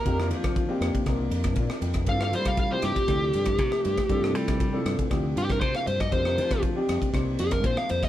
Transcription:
<<
  \new Staff \with { instrumentName = "Lead electric guitar" } { \time 4/4 \key g \phrygian \tempo 4 = 119 bes'8 r2. r8 | f''16 f''16 c''16 f''16 f''16 c''16 g'2~ g'8~ | g'8 r2 g'16 bes'16 c''16 f''16 c''16 ees''16 | c''4 r4. aes'16 bes'16 c''16 f''16 c''16 ees''16 | }
  \new Staff \with { instrumentName = "Grand piano" } { \time 4/4 \key g \phrygian << { r2. d''8 g''8 | r1 | r1 | r1 | } \\ { <bes c' d' ees' g'>16 <bes c' d' ees' f'>8. r16 <bes c' d' ees' g'>8 r16 <bes c' d' ees' bes'>4.~ <bes c' d' ees' bes'>16 r16 | <f c' d' e' a'>16 <f c' d' e' a'>8. r16 <f c' d' e' g'>8 r16 <f c' d' e' a'>4.~ <f c' d' e' a'>16 r16 | <f c' d' e' a'>16 <f c' d' e' a'>8. r16 <f c' d' e' a'>8 r16 <f c' d' e' g'>4.~ <f c' d' e' g'>16 r16 | <g c' d' ees' bes'>16 <g c' d' ees' bes'>8. r16 <g c' d' ees' g'>8 r16 <g c' d' ees' c''>4.~ <g c' d' ees' c''>16 r16 | } >> }
  \new Staff \with { instrumentName = "Ambient pad" } { \clef bass \time 4/4 \key g \phrygian <ees bes f'>1 | <c f a e'>1~ | <c f a e'>1 | <ees g bes>1 | }
  \new Staff \with { instrumentName = "Fingered electric bass" } { \clef bass \time 4/4 \key g \phrygian f,8 f4 f,16 r16 c,8 f,8 bes,16 r16 f,8 | g,8 g4 g,16 r16 d,8 g,8 c16 r16 g,16 r16 | g,8 g4 g,16 r16 d,8 g,8 c16 r16 g,8 | f,8 f4 f,16 r16 c,8 f,8 bes,16 r16 f,16 r16 | }
  \new DrumStaff \with { instrumentName = "Drums" } \drummode { \time 4/4 <bd cymr>16 ss16 cymr16 <bd cymr ss>16 <bd cymr>8 <cymr ss>16 <bd cymr>16 <bd cymr ss>8 cymr16 <bd cymr ss>16 <bd cymr>16 ss16 cymr16 <bd cymr ss>16 | <bd cymr>16 ss16 cymr16 <bd cymr ss>16 <bd cymr>8 <cymr ss>16 <bd cymr>16 <bd cymr ss>8 cymr16 <bd cymr ss>16 <bd cymr>16 ss16 cymr16 <bd cymr ss>16 | <bd cymr>16 ss16 cymr16 <bd cymr ss>16 <bd cymr>8 <cymr ss>16 <bd cymr>16 <bd cymr ss>8 cymr16 <bd cymr ss>16 <bd cymr>16 ss16 cymr16 <bd cymr ss>16 | <bd cymr>16 ss16 cymr16 <bd cymr ss>16 <bd cymr>8 <cymr ss>16 <bd cymr>16 <bd cymr ss>8 cymr16 <bd cymr ss>16 <bd cymr>16 ss16 cymr16 <bd cymr ss>16 | }
>>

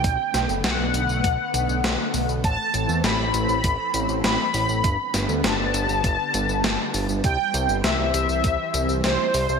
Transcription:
<<
  \new Staff \with { instrumentName = "Analog polysynth" } { \time 4/4 \key a \dorian \tempo 4 = 100 g''4 fis''2. | a''4 b''2 b''4~ | b''4 a''2. | g''4 e''2 c''4 | }
  \new Staff \with { instrumentName = "Analog synth pad" } { \clef bass \time 4/4 \key a \dorian << { <d b>1 | <e c'>1 | <d b>1 | <e c'>1 | } \\ { a1~ | a1 | g1~ | g1 | } >> }
  \new Staff \with { instrumentName = "Analog synth bass" } { \clef bass \time 4/4 \key a \dorian b,,16 r16 b,,16 fis,,16 b,,16 b,,16 b,,16 b,,16 b,,16 r16 b,,16 b,,16 b,,16 r16 b,,16 b,,16 | a,,16 r16 a,,16 e,16 a,,16 a,,16 a,,16 a,,16 a,,16 r16 a,,16 a,,16 a,,16 r16 a,,16 a,,16 | g,,16 r16 g,,16 d,16 g,,16 g,,16 g,,16 g,,16 g,,16 r16 g,,16 g,,16 g,,16 r16 g,,16 g,,16 | c,16 r16 c,16 g,,16 c,16 c,16 c,16 c,16 c,16 r16 c,16 c,16 c,16 r16 c,16 c,16 | }
  \new DrumStaff \with { instrumentName = "Drums" } \drummode { \time 4/4 <hh bd tamb>8 <hh sn tamb>16 tamb16 <hh sn tamb>8 <hh tamb>16 tamb16 <hh bd tamb>8 <hh tamb>16 tamb16 <hh sn tamb>8 <hho tamb>16 tamb16 | <hh bd tamb>8 <hh tamb>16 tamb16 <hh sn tamb>8 <hh tamb>16 tamb16 <hh bd tamb>8 <hh tamb>16 tamb16 <hh sn tamb>8 <hho tamb>16 tamb16 | <hh bd tamb>8 <hh sn tamb>16 tamb16 <hh sn tamb>8 <hh tamb>16 tamb16 <hh bd tamb>8 <hh tamb>16 tamb16 <hh sn tamb>8 <hho tamb>16 tamb16 | <hh bd tamb>8 <hh tamb>16 tamb16 <hh sn tamb>8 <hh tamb>16 tamb16 <hh bd tamb>8 <hh tamb>16 tamb16 <hh sn tamb>8 <hho tamb>16 tamb16 | }
>>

